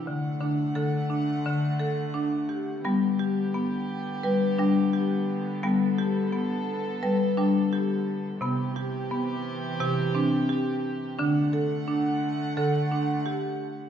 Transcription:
0.06 D3 A3 F#5
0.41 D3 D4
0.75 D3 A4
1.10 D4
1.46 D3
1.79 A4
2.14 D4
2.49 G4
2.84 D3 G3 B3 G4
3.19 G4
3.54 B3
4.23 G3 B4
4.58 G3 D4
4.93 G4
5.62 G3 B3 A4
5.98 G4
6.33 B3
7.03 G3 B4
7.37 G3 D4
7.73 G4
8.41 C3 E3 B3 G4
8.76 G4
9.11 B3
9.80 C3 G4
10.15 C4 D4
10.49 G4
11.18 D3 A3 D4 F#5
11.53 A4
11.88 D4
12.57 D3 A4
12.91 D4
13.26 G4

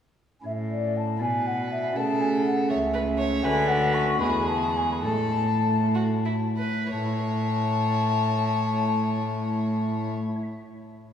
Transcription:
0.41 C#4 E4 C#5
0.45 A2 E5
0.71 D5
0.97 A5
1.17 B3 E4 D5
1.21 B2 B4 G#5
1.47 F#5
1.72 E5
1.92 C#3 A3 C#4 A4 C#5 A5
1.97 C#3
2.21 G#5
2.46 F#5
2.69 C#2 C#5 E5
2.94 B4
3.18 C#5
3.40 D3 A3 F#4 B4 G#5
3.44 D3
3.68 F#5
3.94 C#6
4.17 E2 G#3 E4 G#4 B4 B5
4.22 E2
4.48 A5
4.77 G#5
4.92 B5
5.01 A2 A3 E4 A4 C#5
5.05 A2 A5
5.94 F#4
6.25 E4
6.57 B4
6.90 A2 C#5 A5
6.98 A3
7.06 E4
7.12 C#5
7.19 E5

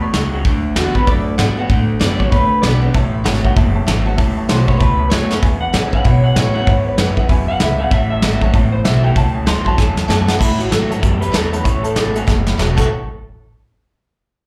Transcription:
Already playing: E2 A2 B2 E3
0.02 C#5
0.13 C#2 A2 C#3 F#3, snare, open hi-hat
0.33 A2 F#3
0.45 D2 D3 A3, kick, open hi-hat
0.64 muted upright bass stroke
0.76 E2 D3 A3 B3 F#4, snare, open hi-hat
0.95 D3 B3 F#4 B4, kick
1.07 F#2 A2 D3 A3 D5, kick, open hi-hat
1.38 G#2 D3 A3 B3 F#4 F#5, snare, open hi-hat
1.57 D3 B3 F#4 F#5
1.69 A2 D3 A3, kick, open hi-hat
1.99 F#2 D3 A3 B3 F#4 D5, snare, open hi-hat
2.19 D3 B3 F#4 C#5, kick
2.32 D2 A2 D3 A3 B4, kick, open hi-hat
2.62 B1 D3 A3 B3 F#4 D5, snare
2.81 D3 B3 F#4
2.94 A1 A2 E3 C#5 E5 A5, kick, open hi-hat
3.13 C#5 E5 B5
3.24 G#1 A2 E3 F#3 A3 C#4 F#4 C#5 E5 A5, snare, open hi-hat
3.43 A2 F#3 C#5 E5 F#5, kick
3.56 F#1 E2 A2 E3 C#5 E5 A5, kick, open hi-hat
3.74 C#5 E5 A5
3.86 G#1 A2 E3 F#3 A3 C#4 F#4 C#5 E5 A5, snare
4.06 A2 F#3 C#4 F#4 C#5 E5 A5
4.16 A1 A2 E3 C#5 E5 A5, kick, open hi-hat
4.36 C#5 E5 A5, muted upright bass stroke
4.48 B1 A2 E3 F#3 A3 C#4 F#4 C5 C#5 E5 A5, snare, open hi-hat
4.67 A2 F#3 C#4 F#4 C#5 E5 B5, kick
4.79 C#2 E2 A2 E3 B4 C#5 E5 A5, kick, open hi-hat
4.98 C#5 E5 A5
5.10 F#2 A2 E3 F#3 A3 C#4 F#4 C#5 E5 A5, snare, open hi-hat
5.29 A2 F#3 C#4 F#4 C#5 E5 A5, snare
5.41 E2 B2 B4 E5 G#5, kick, open hi-hat
5.61 B4 E5 F#5 B5
5.73 E2 G#2 C#3 E3 G#3 C#4 E4 B4 C#5 E5 G#5, snare
5.92 E2 C#3 C#4 E4 B4 E5 F#5 G#5, kick
6.04 E2 B2 B4 C#5 E5 B5, kick, open hi-hat
6.24 B4 E5 F#5 G#5
6.35 E2 A2 C#3 E3 G#3 C#4 E4 B4 C#5 E5 G#5, snare, open hi-hat
6.54 E2 C#3 C#4 E4 B4 E5 F#5 B5
6.66 E2 G#2 B2 B4 C#5 E5 F#5, kick, open hi-hat
6.85 B4 E5 B5
6.97 E2 F#2 C#3 E3 G#3 C#4 E4 B4 E5 F#5, snare, open hi-hat
7.17 E2 C#3 C#4 E4 B4 E5 F#5, kick
7.29 E2 F#2 B2 B4 E5 G#5, kick, open hi-hat
7.48 B4 E5 F#5 G#5
7.60 C#2 E2 G#2 C#3 B4 E5 B5, snare, open hi-hat
7.78 E2 C#3 B4 E5 F#5 G#5
7.91 A1 A2 E3 C#5 E5 A5, kick, open hi-hat
8.10 C#5 E5 A5
8.22 G#1 A2 E3 F#3 A3 C#4 F#4 C#5 E5 A5, snare, open hi-hat
8.41 A2 F#3 C#4 F#4 C#5 E5 A5, kick
8.54 A1 E2 A2 E3 C#5 E5 A5, kick, open hi-hat
8.72 C5 C#5 E5 B5
8.84 B1 A2 E3 F#3 A3 C#4 F#4 C#5 E5 A5, snare, open hi-hat
9.03 A2 F#3 C#4 F#4 C#5 E5 G5 A5
9.15 C#2 A2 E3 C#5 E5 F#5 A5, kick, open hi-hat
9.34 C#5 E5 G#5
9.46 D2 A2 E3 F#3 A3 C#4 F#4 C#5 E5 A5 C6, snare, open hi-hat
9.65 A2 F#3 C#4 F#4 C#5 E5 A5, kick
9.77 E2 A2 E3 C#5 E5 G#5, kick, snare
9.96 C#5 E5 A5, snare
10.07 F#2 A2 E3 F#3 A3 C#4 F#4 C#5 E5 G#5, snare
10.27 A2 F#3 C#4 F#4 C#5 E5 F#5, snare
10.39 A2 E3 E4 C#5 E5 A5, kick, crash
10.59 A2 E3 F#4 C#5 E5 F#5, closed hi-hat
10.70 G#2 A2 E3 F#3 A3 C#4 F#4 A4 C#5 E5 F#5, snare, closed hi-hat
10.89 A2 F#3 C#4 F#4 C#5 E5 A5, closed hi-hat
11.01 E2 F#2 A2 G3 A4 C#5 E5 A5, kick, closed hi-hat
11.21 A2 G3 B4 C#5 E5 A5, closed hi-hat
11.32 E2 A2 E3 F#3 A3 C#4 F#4 A4 C#5 E5 A5, snare, closed hi-hat
11.52 A2 F#3 C#4 F#4 B4 C#5 E5 A5, closed hi-hat
11.64 A1 A2 E3 C#5 E5 A5, kick, closed hi-hat
11.83 A2 E3 A4 C#5 E5 A5, closed hi-hat
11.96 G#1 A2 E3 F#3 A3 C#4 F#4 C#5 E5 B5, snare, closed hi-hat
12.14 A2 F#3 C#4 F#4 C#5 E5 G#5, closed hi-hat
12.27 F#1 E2 A2 G3 C#5 E5 A5, kick, snare
12.46 A2 G3 C#5 E5 B5, snare
12.57 E1 A2 E3 F#3 A3 C#4 F#4 C#5 E5 A5, snare
12.76 A1 A2 E3 A3 C#4 E4 F#4 A4 C#5 E5 A5, kick, crash

